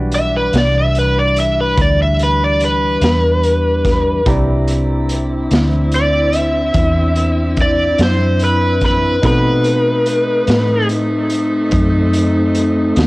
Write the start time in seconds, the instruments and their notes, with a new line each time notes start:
Already playing: fingered electric bass B1, tonewheel organ E3 G3 D4, grand piano F#4 G4 B4 D5
0.12 electric slide guitar E5, closed hi-hat
0.36 electric slide guitar B4
0.53 fingered electric bass C2, snare, closed hi-hat
0.58 electric slide guitar D5
0.78 electric slide guitar E5
0.95 electric slide guitar B4, closed hi-hat
1.18 electric slide guitar D5
1.36 electric slide guitar E5, closed hi-hat
1.61 electric slide guitar B4
1.77 fingered electric bass D2, kick, closed hi-hat
1.81 electric slide guitar D5
2.02 electric slide guitar E5
2.19 closed hi-hat
2.24 electric slide guitar B4
2.44 electric slide guitar D5
2.60 closed hi-hat
2.65 electric slide guitar B4
3.01 fingered electric bass E2, snare, closed hi-hat
3.43 closed hi-hat
3.85 kick, snare, closed hi-hat
4.26 fingered electric bass C2, tonewheel organ C4 D4 E4, saxophone section C4 E4, grand piano E4 G4 D5 A#5, kick, closed hi-hat
4.68 closed hi-hat
5.09 closed hi-hat
5.51 fingered electric bass D2, snare, closed hi-hat
5.92 electric slide guitar D5, closed hi-hat
6.33 electric slide guitar E5, closed hi-hat
6.74 fingered electric bass E2, kick, closed hi-hat
7.16 closed hi-hat
7.57 kick, closed hi-hat
7.62 electric slide guitar D5
7.98 fingered electric bass F#2, snare, closed hi-hat
8.03 electric slide guitar C5
8.40 closed hi-hat
8.44 electric slide guitar B4
8.81 kick, snare, closed hi-hat
8.86 electric slide guitar B4
9.22 fingered electric bass B2, saxophone section A3 C4 D#4, tonewheel organ A3 C4 D#4, grand piano C4 D#4 F#4 A4, kick, closed hi-hat
9.27 electric slide guitar B4
9.64 closed hi-hat
10.06 closed hi-hat
10.47 fingered electric bass A2, snare, closed hi-hat
10.89 closed hi-hat
11.30 closed hi-hat
11.71 fingered electric bass F#2, kick, closed hi-hat
12.13 closed hi-hat
12.55 closed hi-hat
12.96 fingered electric bass D#2, snare, closed hi-hat